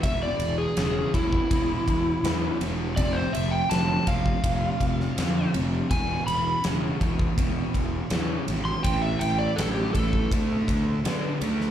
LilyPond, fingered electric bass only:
\new Staff \with { instrumentName = "Fingered electric bass" } { \clef bass \time 4/4 \key e \phrygian \tempo 4 = 82 e,,8 e,,8 e,,8 e,,8 e,,8 e,,8 e,8 e,,8 | f,,8 f,,8 f,,8 f,,8 f,,8 f,,8 f,8 f,,8 | e,,8 e,,8 e,,8 e,,8 e,,8 e,,8 e,8 gis,,8 | a,,8 a,,8 a,,8 a,,8 d,8 d,8 d8 d,8 | }